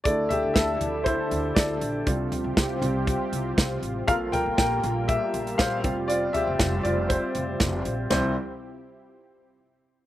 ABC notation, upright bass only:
X:1
M:4/4
L:1/16
Q:1/4=119
K:Cmix
V:1 name="Upright bass" clef=bass
D,,2 z D,, D,,2 D,,3 z D,,2 D,,2 B,,,2 | C,,2 z C,, C,,2 C,,3 z C,,2 C,,2 A,,,2 | B,,,2 z B,,, B,,,2 B,,,3 z B,,,2 B,,,2 F,,,2- | F,,,2 z F,,, F,,,2 F,,,3 z F,,,2 F,,,2 B,,,2 |
C,,2 z12 z2 |]